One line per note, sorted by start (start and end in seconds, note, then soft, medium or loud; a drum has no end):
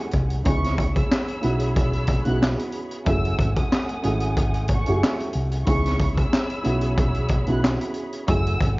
0.00 0.47 F#2 medium
0.00 0.43 A3 medium
0.00 0.47 A3 medium
0.00 0.47 C#4 medium
0.00 0.46 E4 medium
0.00 0.47 G4 medium
0.00 0.47 G#4 medium
0.00 0.43 F#5 medium
0.00 0.43 G#5 medium
0.11 0.41 C2 medium
0.11 kick medium
0.11 closed hi-hat medium
0.30 closed hi-hat medium
0.44 1.02 C#2 loud
0.44 1.38 C#3 medium
0.44 1.38 B3 medium
0.44 1.39 D#4 medium
0.44 1.39 E4 medium
0.44 3.04 G#4 medium
0.44 1.39 G#4 medium
0.44 3.04 C#5 medium
0.44 3.04 B5 medium
0.44 0.92 C#6 loud
0.44 kick loud
0.44 closed hi-hat medium
0.64 snare soft
0.64 closed hi-hat medium
0.78 kick loud
0.78 closed hi-hat medium
0.95 1.72 E6 medium
0.95 kick loud
0.95 closed hi-hat soft
1.11 snare loud
1.11 clap medium
1.28 closed hi-hat medium
1.41 2.23 B1 medium
1.41 2.21 C#3 medium
1.41 2.21 B3 medium
1.41 2.21 D#4 medium
1.41 2.22 E4 medium
1.41 2.22 F#4 medium
1.41 closed hi-hat medium
1.59 closed hi-hat medium
1.74 2.22 E6 medium
1.74 kick loud
1.74 closed hi-hat medium
1.93 closed hi-hat soft
2.07 kick medium
2.07 closed hi-hat medium
2.25 2.55 B1 medium
2.25 3.02 C#3 medium
2.25 3.02 B3 medium
2.25 3.03 D#4 medium
2.25 3.03 E4 medium
2.25 3.03 F#4 medium
2.25 2.39 F#6 medium
2.25 closed hi-hat medium
2.42 snare loud
2.42 clap medium
2.59 closed hi-hat medium
2.72 closed hi-hat medium
2.91 closed hi-hat medium
3.04 3.35 F#1 loud
3.04 3.99 F#2 medium
3.04 3.99 A3 medium
3.04 5.65 A3 medium
3.04 3.99 C#4 medium
3.04 4.00 E4 medium
3.04 4.00 G#4 medium
3.04 5.65 F#5 medium
3.04 5.65 G#5 medium
3.04 3.54 E6 loud
3.04 kick loud
3.04 closed hi-hat medium
3.25 closed hi-hat medium
3.39 3.54 G#1 medium
3.39 kick loud
3.39 closed hi-hat medium
3.56 4.65 D#6 medium
3.56 kick medium
3.56 closed hi-hat medium
3.72 snare loud
3.72 clap medium
3.89 closed hi-hat medium
4.02 4.83 G#1 medium
4.02 4.82 F#2 medium
4.02 4.82 A3 medium
4.02 4.82 C#4 medium
4.02 4.83 E4 medium
4.02 4.83 G#4 medium
4.02 closed hi-hat medium
4.20 closed hi-hat medium
4.37 kick loud
4.37 closed hi-hat medium
4.54 closed hi-hat soft
4.67 5.17 C#6 medium
4.67 kick medium
4.67 closed hi-hat medium
4.86 5.00 F#1 medium
4.86 5.63 F#2 medium
4.86 5.63 A3 medium
4.86 5.64 C#4 medium
4.86 5.64 E4 medium
4.86 4.94 G4 medium
4.86 closed hi-hat medium
4.95 5.67 G#4 medium
5.03 snare loud
5.03 clap loud
5.20 closed hi-hat medium
5.33 5.63 C2 medium
5.33 closed hi-hat medium
5.52 closed hi-hat medium
5.66 6.23 C#2 loud
5.66 6.60 C#3 medium
5.66 6.60 B3 medium
5.66 6.61 D#4 medium
5.66 6.61 E4 medium
5.66 8.25 G#4 medium
5.66 6.61 G#4 medium
5.66 8.25 C#5 medium
5.66 8.25 B5 medium
5.66 6.14 C#6 loud
5.66 kick loud
5.66 closed hi-hat medium
5.86 snare soft
5.86 closed hi-hat medium
6.00 kick loud
6.00 closed hi-hat medium
6.17 6.93 E6 medium
6.17 kick medium
6.17 closed hi-hat soft
6.33 snare loud
6.33 clap medium
6.50 closed hi-hat medium
6.63 7.44 B1 medium
6.63 7.43 C#3 medium
6.63 7.43 B3 medium
6.63 7.43 D#4 medium
6.63 7.44 E4 medium
6.63 7.44 F#4 medium
6.63 closed hi-hat medium
6.81 closed hi-hat medium
6.98 7.46 E6 medium
6.98 kick loud
6.98 closed hi-hat medium
7.15 closed hi-hat soft
7.29 kick medium
7.29 closed hi-hat medium
7.47 7.76 B1 loud
7.47 8.24 C#3 medium
7.47 8.24 B3 medium
7.47 8.24 D#4 medium
7.47 8.25 E4 medium
7.47 8.25 F#4 medium
7.47 7.62 F#6 medium
7.47 closed hi-hat soft
7.64 snare loud
7.64 clap medium
7.81 closed hi-hat medium
7.94 closed hi-hat medium
8.13 closed hi-hat medium
8.27 8.56 F#1 loud
8.27 8.79 F#2 medium
8.27 8.79 A3 medium
8.27 8.79 C#4 medium
8.27 8.79 E4 medium
8.27 8.79 G#4 medium
8.27 8.79 F#5 medium
8.27 8.79 G#5 medium
8.27 8.76 E6 loud
8.27 kick loud
8.27 closed hi-hat medium
8.47 closed hi-hat medium
8.60 8.76 G#1 medium
8.60 kick loud
8.60 closed hi-hat medium